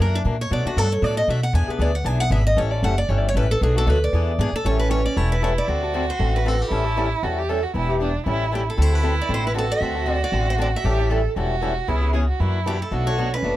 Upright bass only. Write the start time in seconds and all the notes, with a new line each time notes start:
0.00 F#2
0.25 A#2
0.51 B2
0.65 muted upright bass stroke
0.77 G2
1.02 A2
1.28 B2
1.53 E2
1.68 muted upright bass stroke
1.79 D2
2.04 B1
2.30 G#1
2.57 A1
2.83 F#1
3.09 G1
3.35 A1
3.61 B1
3.87 D2
4.13 E2
4.39 G#2
4.53 muted upright bass stroke
4.65 A1
5.17 E1
5.68 D2
6.19 A1
6.71 A1
7.23 E2
7.74 E1
8.26 A1
8.78 D2
9.29 A1
9.81 D2
10.32 A1
10.84 A1
11.36 E1
11.88 C#2
12.40 F#2
12.91 B1
13.43 F#1